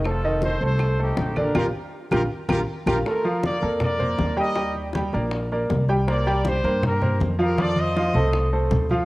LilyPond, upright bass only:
\new Staff \with { instrumentName = "Upright bass" } { \clef bass \time 4/4 \key bes \major \tempo 4 = 159 f,,4. c,4. bes,,4 | bes,,8 r4 bes,,8 r8 bes,,8 r8 bes,,8 | r4. f,4. ees,4~ | ees,4. bes,,4. c,4~ |
c,4. g,4. f,4~ | f,4. c,4. d,4 | }